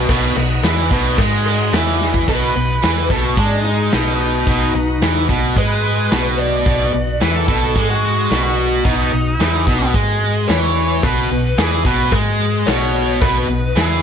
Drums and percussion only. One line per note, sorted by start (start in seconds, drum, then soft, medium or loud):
0.09 kick loud
0.09 cowbell medium
0.09 crash medium
0.36 snare soft
0.36 cowbell medium
0.36 crash medium
0.63 snare loud
0.63 cowbell medium
0.63 crash medium
0.90 kick loud
0.90 crash medium
1.18 kick loud
1.18 cowbell medium
1.18 crash medium
1.46 cowbell medium
1.46 crash medium
1.73 snare loud
1.73 cowbell medium
1.73 crash medium
2.02 snare medium
2.14 kick medium
2.28 kick loud
2.28 crash loud
2.83 snare loud
2.83 open hi-hat medium
3.10 kick medium
3.37 kick loud
3.37 open hi-hat medium
3.92 snare loud
3.92 open hi-hat medium
4.47 kick loud
4.47 open hi-hat medium
5.01 snare loud
5.01 open hi-hat medium
5.29 kick loud
5.56 kick loud
5.56 open hi-hat medium
6.11 snare loud
6.11 open hi-hat medium
6.66 kick loud
6.66 open hi-hat medium
7.20 snare loud
7.20 open hi-hat soft
7.48 kick loud
7.76 kick loud
7.76 open hi-hat medium
8.31 snare loud
8.31 open hi-hat medium
8.85 kick loud
8.85 open hi-hat medium
9.40 snare loud
9.40 open hi-hat medium
9.67 kick loud
9.94 kick loud
9.94 open hi-hat medium
10.49 snare loud
10.49 open hi-hat medium
10.64 snare soft
11.03 kick loud
11.03 crash loud
11.03 cowbell medium
11.57 snare loud
11.57 open hi-hat medium
11.57 cowbell medium
11.85 kick loud
12.12 kick loud
12.12 open hi-hat medium
12.12 cowbell loud
12.67 snare loud
12.67 open hi-hat medium
12.67 cowbell medium
12.82 snare soft
13.22 kick loud
13.22 open hi-hat medium
13.22 cowbell medium
13.76 snare loud
13.76 open hi-hat medium
13.76 cowbell medium